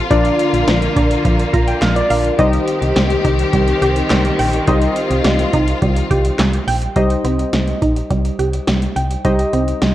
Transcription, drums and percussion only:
0.11 kick, closed hi-hat
0.25 closed hi-hat
0.39 closed hi-hat
0.54 closed hi-hat
0.68 snare, closed hi-hat
0.82 closed hi-hat
0.96 kick, closed hi-hat
1.11 closed hi-hat
1.25 kick, closed hi-hat
1.40 closed hi-hat
1.54 kick, closed hi-hat
1.68 closed hi-hat
1.82 snare, clap, closed hi-hat
1.96 closed hi-hat
2.11 open hi-hat
2.25 closed hi-hat
2.39 kick, closed hi-hat
2.53 closed hi-hat
2.68 closed hi-hat
2.82 closed hi-hat
2.96 snare, closed hi-hat
3.10 closed hi-hat
3.25 kick, closed hi-hat
3.39 closed hi-hat
3.53 kick, closed hi-hat
3.68 closed hi-hat
3.82 closed hi-hat
3.96 closed hi-hat
4.10 snare, clap, closed hi-hat
4.25 closed hi-hat
4.39 open hi-hat
4.53 closed hi-hat
4.67 kick, closed hi-hat
4.82 closed hi-hat
4.96 closed hi-hat
5.11 closed hi-hat
5.24 snare, closed hi-hat
5.39 closed hi-hat
5.53 kick, closed hi-hat
5.67 closed hi-hat
5.82 kick, closed hi-hat
5.96 closed hi-hat
6.11 kick, closed hi-hat
6.25 closed hi-hat
6.39 snare, clap, closed hi-hat
6.53 closed hi-hat
6.68 open hi-hat
6.82 closed hi-hat
6.96 kick, closed hi-hat
7.10 closed hi-hat
7.25 closed hi-hat
7.39 closed hi-hat
7.53 snare, closed hi-hat
7.67 closed hi-hat
7.82 kick, closed hi-hat
7.96 closed hi-hat
8.10 kick, closed hi-hat
8.25 closed hi-hat
8.39 closed hi-hat
8.53 closed hi-hat
8.67 snare, closed hi-hat
8.82 closed hi-hat
8.96 closed hi-hat
9.11 closed hi-hat
9.25 kick, closed hi-hat
9.39 closed hi-hat
9.53 closed hi-hat
9.68 closed hi-hat
9.82 snare, closed hi-hat

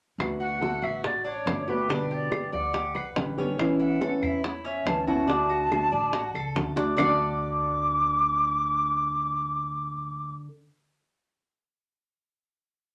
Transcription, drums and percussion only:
0.20 high bongo, claves
0.63 high bongo
0.84 claves
1.04 high bongo
1.47 high bongo, low bongo, claves
1.90 high bongo
2.11 high bongo
2.32 high bongo, claves
2.53 high bongo
2.74 high bongo
2.95 high bongo, claves
3.16 high bongo, low bongo
3.59 high bongo, claves
4.01 high bongo
4.23 claves
4.44 high bongo
4.87 high bongo, low bongo, claves
5.30 high bongo
5.51 high bongo
5.72 high bongo, claves
5.93 high bongo
6.13 high bongo
6.35 high bongo, claves
6.56 high bongo, low bongo
6.77 high bongo
6.98 low bongo, claves

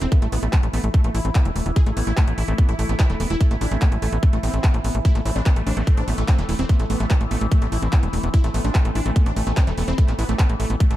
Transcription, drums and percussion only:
0.02 closed hi-hat
0.12 kick, closed hi-hat
0.22 closed hi-hat
0.32 open hi-hat
0.43 closed hi-hat
0.53 kick, clap, closed hi-hat
0.63 closed hi-hat
0.73 open hi-hat
0.94 kick, closed hi-hat
1.04 closed hi-hat
1.15 open hi-hat
1.25 closed hi-hat
1.35 kick, clap, closed hi-hat
1.45 closed hi-hat
1.56 open hi-hat
1.66 closed hi-hat
1.76 kick, closed hi-hat
1.86 closed hi-hat
1.97 open hi-hat
2.17 kick, clap, closed hi-hat
2.28 closed hi-hat
2.38 open hi-hat
2.48 closed hi-hat
2.58 kick, closed hi-hat
2.69 closed hi-hat
2.79 open hi-hat
2.89 closed hi-hat
2.99 kick, clap, closed hi-hat
3.10 closed hi-hat
3.20 open hi-hat
3.30 closed hi-hat
3.41 kick, closed hi-hat
3.51 closed hi-hat
3.61 open hi-hat
3.71 closed hi-hat
3.82 kick, clap, closed hi-hat
3.92 closed hi-hat
4.02 open hi-hat
4.12 closed hi-hat
4.23 kick, closed hi-hat
4.33 closed hi-hat
4.43 open hi-hat
4.54 closed hi-hat
4.64 kick, clap, closed hi-hat
4.74 closed hi-hat
4.84 open hi-hat
4.95 closed hi-hat
5.05 kick, closed hi-hat
5.15 closed hi-hat
5.25 open hi-hat
5.36 closed hi-hat
5.46 kick, clap, closed hi-hat
5.56 closed hi-hat
5.67 open hi-hat
5.77 closed hi-hat
5.87 kick, closed hi-hat
5.97 closed hi-hat
6.08 open hi-hat
6.18 closed hi-hat
6.28 kick, clap, closed hi-hat
6.39 closed hi-hat
6.49 open hi-hat
6.59 closed hi-hat
6.69 kick, closed hi-hat
6.80 closed hi-hat
6.90 open hi-hat
7.00 closed hi-hat
7.10 kick, clap, closed hi-hat
7.21 closed hi-hat
7.31 open hi-hat
7.41 closed hi-hat
7.51 kick, closed hi-hat
7.62 closed hi-hat
7.72 open hi-hat
7.82 closed hi-hat
7.93 kick, clap, closed hi-hat
8.03 closed hi-hat
8.13 open hi-hat
8.23 closed hi-hat
8.34 kick, closed hi-hat
8.44 closed hi-hat
8.54 open hi-hat
8.65 closed hi-hat
8.75 kick, clap, closed hi-hat
8.85 closed hi-hat
8.95 open hi-hat
9.06 closed hi-hat
9.16 kick, closed hi-hat
9.26 closed hi-hat
9.36 open hi-hat
9.47 closed hi-hat
9.57 kick, clap, closed hi-hat
9.67 closed hi-hat
9.78 open hi-hat
9.88 closed hi-hat
9.98 kick, closed hi-hat
10.08 clap, closed hi-hat
10.19 open hi-hat
10.29 closed hi-hat
10.39 kick, clap, closed hi-hat
10.49 closed hi-hat
10.60 open hi-hat
10.70 closed hi-hat
10.80 kick, closed hi-hat
10.91 closed hi-hat

